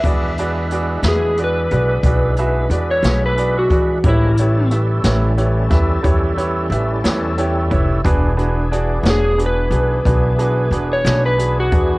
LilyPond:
<<
  \new Staff \with { instrumentName = "Electric slide guitar" } { \time 12/8 \key e \mixolydian \tempo 4. = 60 r4. gis'8 b'2~ b'16 cis''8 b'8 fis'8. | e'4 r1 r4 | r4. gis'8 b'2~ b'16 cis''8 b'8 fis'8. | }
  \new Staff \with { instrumentName = "Grand piano" } { \time 12/8 \key e \mixolydian <fis' gis' b' d''>8 <fis' gis' b' d''>8 <fis' gis' b' d''>8 <fis' gis' b' e''>8 <fis' gis' b' d''>8 <fis' gis' b' d''>8 <fis' gis' b' d''>8 <fis' gis' b' e''>8 <fis' gis' b' d''>8 <fis' gis' b' cis''>8 <fis' gis' b' d''>8 <fis' gis' b' d''>8 | <e' g' b' cis''>8 <e' g' b' cis''>8 <e' g' b' e''>8 <e' g' b' cis''>8 <e' g' b' cis''>8 <e' g' b' e''>8 <e' g' b' cis''>8 <e' g' b' cis''>8 <e' g' b' e''>8 <e' g' b' cis''>8 <e' g' b' cis'' g''>8 <e' g' b' cis'' e''>8 | <d' fis' gis' b'>8 <d' fis' gis' b'>8 <d' fis' gis' d''>8 <d' fis' gis' cis''>8 <d' fis' gis' b'>8 <d' fis' gis' b'>8 <d' fis' gis' b'>8 <d' fis' gis' b'>8 <d' fis' gis' b'>8 <d' fis' gis' b'>8 <d' fis' gis' b'>8 <d' fis' gis' b'>8 | }
  \new Staff \with { instrumentName = "Tonewheel organ" } { \time 12/8 \key e \mixolydian <gis d' e' b'>1. | <f gis d' ais'>8 <g cis' e' a'>1~ <g cis' e' a'>4. | <e b d' gis'>1. | }
  \new Staff \with { instrumentName = "Upright bass" } { \clef bass \time 12/8 \key e \mixolydian e,4. e,4 b,,8 b,,4 e,8 b,,4 e8 | a,,4. a,,4 e,8 e,4 a,,8 e,4 f,,8 | e,,4. e,,4 b,,8 b,,4 e,,8 b,,4 e,8 | }
  \new DrumStaff \with { instrumentName = "Drums" } \drummode { \time 12/8 <hh bd>8 hh8 hh8 <hh sn>8 hh8 hh8 <hh bd>8 hh8 hh8 <hh sn>8 hh8 <hh bd>8 | <hh bd>8 hh8 hh8 <hh sn>8 hh8 <hh bd sn>8 <hh bd>8 hh8 hh8 <hh sn>8 hh8 <hh bd>8 | <hh bd>8 hh8 hh8 <hh sn>8 hh8 hh8 <hh bd>8 hh8 hh8 <hh sn>8 hh8 <hh bd>8 | }
>>